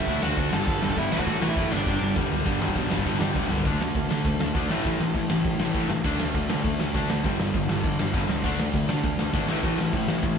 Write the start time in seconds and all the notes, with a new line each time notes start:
Already playing: E4 E5
0.00 kick
0.07 D2 D3 A3 D4, kick, crash
0.22 D2 D3 A3 D4 F#4 F#5, snare
0.37 D2 D3 A3 D4, kick, crash
0.51 G1 G2 D3 G3 A4 A5, snare
0.66 G1 G2 D3 G3, kick, crash
0.82 G1 G2 D3 G3, snare
0.90 A4 A5, kick
0.97 G1 G2 D3 G3 E4 E5, kick, crash
1.12 A1 A2 E3 A3, snare
1.19 F#4 F#5, kick
1.27 A1 A2 E3 A3, kick, crash
1.42 A1 A2 E3 A3, snare
1.49 E4 E5
1.56 F#1 A2 E3 A3, kick, crash
1.72 G1 G2 D3 G3 D4 D5, snare
1.86 G1 G2 D3 G3, kick, snare
2.01 G1 G2 D3 G3
2.16 G1 G2 D3 G3, kick, mid tom
2.31 G2 D3 G3, floor tom
2.45 G1 G2 D3 G3, kick, crash
2.60 G2 D3 G3, snare
2.68 kick
2.75 B1 G2 D3 G3, kick, ride
2.90 G1 G2 D3 G3, snare
2.98 kick
3.05 G1 G2 D3 G3, kick, ride
3.20 G1 G2 D3 G3, snare
3.34 D2 G2 D3 G3, kick, snare
3.49 G1 G2 D3 G3, floor tom
3.65 D2 D3 A3 D4, kick, open hi-hat
3.80 D2 D3 A3, snare
3.95 D2 D3 A3, kick, open hi-hat
4.09 D3 A3 D4, snare
4.25 D2 D3 A3, kick, open hi-hat
4.40 D2 D3 A3, snare
4.55 D2 D3 A3 D4, kick, open hi-hat
4.69 A1 A2 E3 A3, snare
4.85 A1 A2 E3 A3, kick, open hi-hat
4.99 A1 A2 E3, snare
5.14 A1 A2 E3 A3, kick, open hi-hat
5.29 A1 A2 E3, snare
5.44 A1 A2 E3, kick, open hi-hat
5.59 A1 A2 E3 A3, snare
5.74 A1 A2 E3 A3, kick, open hi-hat
5.89 A1 A2 E3, snare
6.04 D2 D3 A3 D4, kick, crash
6.19 D2 D3 A3, snare
6.34 D2 D3 A3, kick, open hi-hat
6.49 D3 A3 D4, snare
6.64 D2 D3 A3, kick, open hi-hat
6.79 D2 D3 A3, snare
6.94 D2 D3 A3 D4, kick, open hi-hat
7.10 D2 D3 A3, snare
7.23 G1 G2 D3 G3, kick, open hi-hat
7.39 G1 G2 D3, snare
7.54 G1 G2 D3, kick, open hi-hat
7.68 G1 G2 D3 G3, snare
7.84 G1 G2 D3, kick, open hi-hat
7.99 G1 G2 D3, snare
8.13 G1 G2 D3 G3, kick, open hi-hat
8.29 C#2 G2 D3, snare
8.44 D2 D3 A3 D4, kick, crash
8.59 D2 D3 A3, snare
8.74 D2 D3 A3, kick, open hi-hat
8.88 D3 A3 D4, snare
9.04 D2 D3 A3, kick, open hi-hat
9.19 D2 D3 A3, snare
9.34 G#1 D3 A3 D4, kick, open hi-hat
9.48 A1 A2 E3 A3, snare
9.63 A1 A2 E3 A3, kick, open hi-hat
9.78 A1 A2 E3, snare
9.93 A1 A2 E3 A3, kick, open hi-hat
10.08 A1 A2 E3, snare
10.22 A1 A2 E3, kick, open hi-hat